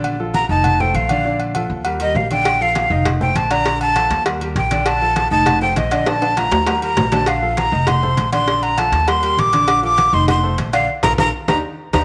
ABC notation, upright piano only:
X:1
M:4/4
L:1/8
Q:1/4=199
K:Bb
V:1 name="Upright piano"
[D,Dd] [F,FA]2 [E,Ee]2 [A,Ac]2 [D,Dd] | [D,Dd]2 [F,FA]2 [G,GB] [G,GB]2 [D,Dd]- | [D,Dd] [F,FA]2 [E,Ee]2 [A,Ac]2 [D,Dd] | [D,Dd]2 [F,FA]2 [G,GB] [G,GB]2 [D,Dd]- |
[D,Dd] [F,FA]2 [E,Ee]2 [A,Ac]2 [D,Dd] | [D,Dd]2 [F,A,F]2 [G,GB] [G,GB]2 [D,Dd]- | [D,Dd] [F,FA]2 [E,Ee]2 [A,Ac]2 [D,Dd] | [D,Dd]2 [F,FA]2 [G,GB] [G,GB]2 [D,Dd]- |
[D,Dd] [F,FA]2 [E,Ee]2 [A,Ac]2 [D,Dd] | z [FAB] [FAB] z [DEG] z2 [DEG] |]